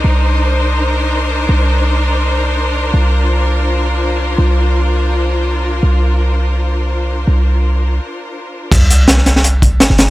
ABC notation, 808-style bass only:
X:1
M:4/4
L:1/16
Q:"Swing 16ths" 1/4=166
K:Cm
V:1 name="808-style bass" clef=bass
C,,16 | C,,16 | C,,16 | C,,16 |
C,,16 | C,,8 z8 | C,,12 G,,, G,,,3 |]